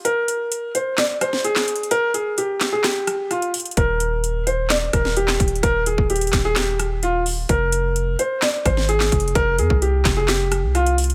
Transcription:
0.05 0.71 A#4 loud
0.05 closed hi-hat medium
0.28 closed hi-hat medium
0.52 closed hi-hat medium
0.75 0.94 C5 medium
0.75 closed hi-hat medium
0.98 1.17 D5 medium
0.98 snare loud
0.98 clap medium
0.98 closed hi-hat medium
1.21 1.40 C5 medium
1.21 cross-stick loud
1.21 closed hi-hat medium
1.33 snare medium
1.44 1.88 G#4 loud
1.44 closed hi-hat medium
1.56 snare medium
1.56 clap medium
1.68 closed hi-hat medium
1.76 closed hi-hat medium
1.83 closed hi-hat soft
1.91 2.10 A#4 loud
1.91 closed hi-hat medium
2.14 2.33 G#4 medium
2.14 closed hi-hat medium
2.38 2.71 G4 medium
2.38 closed hi-hat medium
2.60 snare medium
2.60 clap medium
2.60 closed hi-hat medium
2.72 2.82 G#4 medium
2.84 3.28 G4 medium
2.84 snare loud
2.84 clap medium
2.84 closed hi-hat medium
3.07 cross-stick loud
3.07 closed hi-hat medium
3.31 3.50 F4 medium
3.31 cross-stick medium
3.31 closed hi-hat medium
3.42 closed hi-hat medium
3.54 closed hi-hat medium
3.54 open hi-hat medium
3.60 closed hi-hat medium
3.65 closed hi-hat medium
3.71 closed hi-hat soft
3.77 4.89 D#1 loud
3.77 4.43 A#4 medium
3.77 kick loud
3.77 closed hi-hat medium
4.00 closed hi-hat medium
4.24 closed hi-hat medium
4.47 4.66 C5 medium
4.47 closed hi-hat medium
4.70 4.89 D5 medium
4.70 snare loud
4.70 clap medium
4.70 closed hi-hat medium
4.93 5.38 D#1 loud
4.93 5.12 A#4 medium
4.93 kick loud
4.93 cross-stick loud
4.93 closed hi-hat medium
5.05 snare medium
5.17 5.60 G4 medium
5.17 closed hi-hat medium
5.28 snare medium
5.28 clap medium
5.40 5.62 D#1 loud
5.40 kick loud
5.40 closed hi-hat medium
5.48 closed hi-hat medium
5.56 closed hi-hat soft
5.63 5.97 D#1 loud
5.63 5.82 A#4 loud
5.63 kick loud
5.63 closed hi-hat medium
5.86 6.06 G#4 medium
5.86 closed hi-hat medium
5.98 6.32 D#1 loud
5.98 kick medium
6.10 6.43 G4 medium
6.10 closed hi-hat medium
6.16 closed hi-hat medium
6.21 closed hi-hat medium
6.27 closed hi-hat medium
6.32 7.45 D#1 loud
6.32 kick medium
6.32 snare medium
6.32 clap medium
6.32 closed hi-hat medium
6.45 6.54 G#4 medium
6.56 7.00 G4 medium
6.56 snare loud
6.56 clap medium
6.56 closed hi-hat medium
6.79 cross-stick loud
6.79 closed hi-hat medium
7.03 7.22 F4 medium
7.03 closed hi-hat medium
7.26 open hi-hat medium
7.49 8.16 F1 loud
7.49 8.15 A#4 medium
7.49 kick loud
7.49 closed hi-hat medium
7.72 closed hi-hat medium
7.96 closed hi-hat medium
8.19 8.38 C5 medium
8.19 closed hi-hat medium
8.42 8.61 D5 medium
8.42 snare loud
8.42 clap medium
8.42 closed hi-hat medium
8.66 9.10 G#1 loud
8.66 8.85 C5 medium
8.66 kick loud
8.66 cross-stick loud
8.66 closed hi-hat medium
8.77 snare medium
8.89 9.32 G#4 medium
8.89 closed hi-hat medium
9.00 snare loud
9.00 clap medium
9.12 9.34 F1 loud
9.12 kick loud
9.12 closed hi-hat medium
9.20 closed hi-hat medium
9.28 closed hi-hat soft
9.35 9.60 F1 loud
9.35 9.54 A#4 loud
9.35 kick loud
9.35 closed hi-hat medium
9.59 9.70 F2 loud
9.59 9.78 G#4 medium
9.59 closed hi-hat medium
9.70 10.04 C2 loud
9.70 kick medium
9.82 10.15 G4 medium
9.82 closed hi-hat medium
10.05 10.65 F1 loud
10.05 kick medium
10.05 snare medium
10.05 clap medium
10.05 closed hi-hat medium
10.17 10.26 G#4 medium
10.28 10.72 G4 medium
10.28 snare loud
10.28 clap medium
10.28 closed hi-hat medium
10.52 cross-stick loud
10.52 closed hi-hat medium
10.63 11.15 C2 loud
10.75 10.94 F4 medium
10.75 cross-stick medium
10.75 closed hi-hat medium
10.86 closed hi-hat medium
10.98 closed hi-hat medium
10.98 open hi-hat medium
11.04 closed hi-hat medium
11.10 closed hi-hat medium

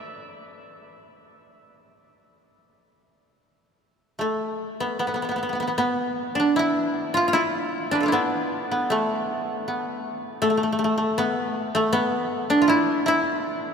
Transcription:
0.00 0.27 D5 medium
0.00 0.82 D5 medium
0.00 3.33 E5 medium
0.00 3.34 E5 medium
4.19 7.07 A3 medium
4.19 7.09 A3 medium
4.80 4.99 B3 medium
4.99 5.07 B3 medium
4.99 5.08 B3 medium
5.07 5.14 B3 soft
5.07 5.15 B3 soft
5.14 5.22 B3 soft
5.14 5.24 B3 soft
5.22 5.28 B3 soft
5.22 5.31 B3 soft
5.29 5.36 B3 soft
5.29 5.38 B3 soft
5.36 5.42 B3 soft
5.36 5.49 B3 soft
5.43 5.52 B3 soft
5.49 5.55 B3 soft
5.49 5.60 B3 soft
5.55 5.62 B3 soft
5.60 5.67 B3 medium
5.60 5.68 B3 soft
5.67 5.77 B3 medium
5.67 5.78 B3 soft
5.78 8.12 B3 medium
5.78 8.13 B3 medium
6.35 7.91 D4 medium
6.40 7.92 D4 medium
6.56 7.20 E4 medium
6.56 7.23 E4 medium
7.14 7.27 F4 medium
7.14 7.41 F4 medium
7.28 7.39 F4 medium
7.33 8.08 E4 medium
7.33 9.61 E4 medium
7.91 8.13 D4 medium
7.91 8.05 D4 medium
7.91 9.73 B4 soft
8.00 10.22 F4 soft
8.00 9.91 A4 soft
8.06 10.48 D4 soft
8.06 10.34 E4 medium
8.12 10.81 B3 medium
8.12 8.71 B3 medium
8.12 10.56 D4 medium
8.71 9.67 B3 medium
8.90 10.41 A3 medium
8.90 10.42 A3 medium
9.68 11.18 B3 medium
10.42 11.74 A3 medium
10.42 10.50 A3 medium
10.50 10.57 A3 medium
10.57 10.63 A3 medium
10.63 10.72 A3 medium
10.72 10.78 A3 medium
10.79 10.84 A3 medium
10.84 10.97 A3 medium
10.98 11.75 A3 medium
11.18 11.92 B3 medium
11.75 13.74 A3 medium
11.93 13.74 B3 medium
12.50 13.74 D4 medium
12.62 12.75 F4 medium
12.68 13.05 E4 medium
12.68 13.08 E4 medium
13.06 13.74 E4 medium

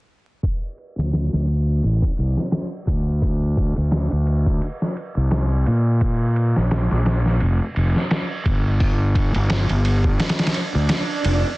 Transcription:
0.43 kick medium
0.43 ride medium
0.78 ride medium
0.98 1.28 D2 medium
0.98 snare soft
1.13 snare medium
1.13 ride medium
1.33 1.81 D2 medium
1.33 snare soft
1.48 ride medium
1.83 2.01 A1 medium
1.83 ride medium
2.02 kick medium
2.17 2.35 C2 medium
2.17 ride medium
2.37 snare soft
2.52 snare loud
2.52 ride medium
2.87 3.73 D2 medium
2.87 kick medium
2.87 ride medium
3.22 kick medium
3.22 open hi-hat medium
3.57 kick medium
3.57 ride medium
3.76 4.07 D2 medium
3.76 ride soft
3.91 snare medium
3.91 ride medium
4.11 4.59 D2 medium
4.11 ride soft
4.26 ride medium
4.46 kick medium
4.62 ride medium
4.82 snare soft
4.97 ride medium
5.17 5.64 C2 medium
5.31 snare loud
5.31 ride medium
5.66 6.53 A#2 loud
5.66 ride medium
6.01 kick loud
6.01 ride medium
6.36 ride medium
6.56 6.87 A#1 medium
6.56 snare soft
6.71 snare loud
6.71 ride medium
6.91 7.39 A#1 medium
6.91 snare soft
7.06 snare loud
7.06 ride medium
7.26 snare soft
7.40 7.59 F1 medium
7.40 ride medium
7.76 7.93 F1 medium
7.76 ride medium
7.96 snare soft
8.11 snare loud
8.11 ride medium
8.46 9.31 G1 medium
8.46 kick medium
8.46 ride medium
8.80 kick loud
8.80 open hi-hat medium
9.15 kick medium
9.15 ride medium
9.34 9.65 G1 medium
9.34 ride soft
9.50 snare loud
9.50 ride medium
9.69 10.17 G1 medium
9.69 ride soft
9.85 ride medium
10.04 kick medium
10.20 snare medium
10.20 ride medium
10.20 swell medium
10.29 snare medium
10.29 ride medium
10.39 snare medium
10.39 ride medium
10.47 snare medium
10.47 ride medium
10.54 ride medium
10.75 10.88 D2 medium
10.89 snare loud
10.89 ride medium
11.24 11.42 F1 medium
11.24 ride medium

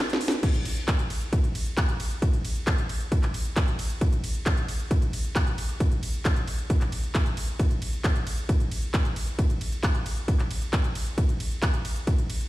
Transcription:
0.10 snare loud
0.10 closed hi-hat soft
0.21 open hi-hat loud
0.28 snare loud
0.28 closed hi-hat soft
0.43 kick loud
0.43 closed hi-hat medium
0.43 crash loud
0.43 ride medium
0.54 closed hi-hat soft
0.65 open hi-hat loud
0.65 ride medium
0.77 closed hi-hat soft
0.88 kick loud
0.88 clap loud
0.88 closed hi-hat medium
0.88 ride medium
0.99 closed hi-hat soft
1.10 open hi-hat loud
1.10 ride medium
1.21 closed hi-hat soft
1.33 kick loud
1.33 closed hi-hat medium
1.33 ride medium
1.44 closed hi-hat soft
1.55 open hi-hat loud
1.55 ride medium
1.66 closed hi-hat soft
1.77 kick loud
1.77 clap loud
1.77 closed hi-hat medium
1.77 ride medium
1.89 closed hi-hat soft
2.00 open hi-hat loud
2.00 ride medium
2.11 closed hi-hat soft
2.22 kick loud
2.22 closed hi-hat medium
2.22 ride medium
2.33 closed hi-hat soft
2.45 open hi-hat loud
2.45 ride medium
2.56 closed hi-hat soft
2.67 kick loud
2.67 clap loud
2.67 closed hi-hat medium
2.67 ride medium
2.78 closed hi-hat soft
2.89 open hi-hat loud
2.89 ride medium
3.01 closed hi-hat soft
3.12 kick loud
3.12 closed hi-hat medium
3.12 ride medium
3.23 clap soft
3.23 closed hi-hat soft
3.34 open hi-hat loud
3.34 ride medium
3.45 closed hi-hat soft
3.57 kick loud
3.57 clap loud
3.57 closed hi-hat medium
3.57 ride medium
3.68 closed hi-hat soft
3.79 open hi-hat loud
3.79 ride medium
3.90 closed hi-hat soft
4.01 kick loud
4.01 closed hi-hat medium
4.01 ride medium
4.13 closed hi-hat soft
4.24 open hi-hat loud
4.24 ride medium
4.35 closed hi-hat soft
4.46 kick loud
4.46 clap loud
4.46 closed hi-hat medium
4.46 ride medium
4.57 closed hi-hat soft
4.68 open hi-hat loud
4.68 ride medium
4.80 closed hi-hat soft
4.91 kick loud
4.91 closed hi-hat medium
4.91 ride medium
5.02 closed hi-hat soft
5.13 open hi-hat loud
5.13 ride medium
5.24 closed hi-hat soft
5.36 kick loud
5.36 clap loud
5.36 closed hi-hat medium
5.36 ride medium
5.47 closed hi-hat soft
5.58 open hi-hat loud
5.58 ride medium
5.69 closed hi-hat soft
5.80 kick loud
5.80 closed hi-hat medium
5.80 ride medium
5.92 closed hi-hat soft
6.03 open hi-hat loud
6.03 ride medium
6.14 closed hi-hat soft
6.25 kick loud
6.25 clap loud
6.25 closed hi-hat medium
6.25 ride medium
6.36 closed hi-hat soft
6.48 open hi-hat loud
6.48 ride medium
6.59 closed hi-hat soft
6.70 kick loud
6.70 closed hi-hat medium
6.70 ride medium
6.81 clap soft
6.81 closed hi-hat soft
6.92 open hi-hat loud
6.92 ride medium
7.03 closed hi-hat soft
7.15 kick loud
7.15 clap loud
7.15 closed hi-hat medium
7.15 ride medium
7.26 closed hi-hat soft
7.37 open hi-hat loud
7.37 ride medium
7.48 closed hi-hat soft
7.59 kick loud
7.59 closed hi-hat medium
7.59 ride medium
7.71 closed hi-hat soft
7.82 open hi-hat loud
7.82 ride medium
7.93 closed hi-hat soft
8.04 kick loud
8.04 clap loud
8.04 closed hi-hat medium
8.04 ride medium
8.16 closed hi-hat soft
8.27 open hi-hat loud
8.27 ride medium
8.38 closed hi-hat soft
8.49 kick loud
8.49 closed hi-hat medium
8.49 ride medium
8.60 closed hi-hat soft
8.71 open hi-hat loud
8.71 ride medium
8.83 closed hi-hat soft
8.94 kick loud
8.94 clap loud
8.94 closed hi-hat medium
8.94 ride medium
9.05 closed hi-hat soft
9.16 open hi-hat loud
9.16 ride medium
9.27 closed hi-hat soft
9.39 kick loud
9.39 closed hi-hat medium
9.39 ride medium
9.50 closed hi-hat soft
9.61 open hi-hat loud
9.61 ride medium
9.72 closed hi-hat soft
9.83 kick loud
9.83 clap loud
9.83 closed hi-hat medium
9.83 ride medium
9.95 closed hi-hat soft
10.06 open hi-hat loud
10.06 ride medium
10.17 closed hi-hat soft
10.28 kick loud
10.28 closed hi-hat medium
10.28 ride medium
10.39 clap soft
10.39 closed hi-hat soft
10.51 open hi-hat loud
10.51 ride medium
10.62 closed hi-hat soft
10.73 kick loud
10.73 clap loud
10.73 closed hi-hat medium
10.73 ride medium
10.84 closed hi-hat soft
10.95 open hi-hat loud
10.95 ride medium
11.07 closed hi-hat soft
11.18 kick loud
11.18 closed hi-hat medium
11.18 ride medium
11.29 closed hi-hat soft
11.40 open hi-hat loud
11.40 ride medium
11.51 closed hi-hat soft
11.62 kick loud
11.62 clap loud
11.62 closed hi-hat medium
11.62 ride medium
11.74 closed hi-hat soft
11.85 open hi-hat loud
11.85 ride medium
11.96 closed hi-hat soft
12.07 kick loud
12.07 closed hi-hat medium
12.07 ride medium
12.18 closed hi-hat soft
12.30 open hi-hat loud
12.30 ride medium
12.41 closed hi-hat soft

